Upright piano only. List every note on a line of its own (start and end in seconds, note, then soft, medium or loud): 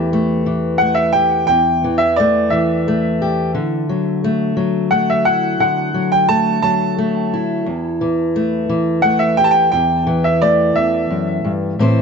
0.78 0.97 F#5 medium
0.95 1.14 E5 medium
1.13 1.45 G5 loud
1.47 2.01 G5 medium
1.98 2.17 E5 medium
2.16 2.52 D5 medium
2.50 3.24 E5 medium
4.91 5.09 F#5 medium
5.10 5.27 E5 medium
5.25 5.59 F#5 medium
5.60 6.08 F#5 medium
6.12 6.29 G5 medium
6.29 6.61 A5 medium
6.62 7.36 A5 medium
9.02 9.20 F#5 medium
9.19 9.37 E5 medium
9.37 9.45 G5 loud
9.44 9.52 A5 medium
9.51 9.70 G5 medium
9.72 10.25 G5 medium
10.24 10.42 E5 medium
10.42 10.73 D5 medium
10.76 11.49 E5 medium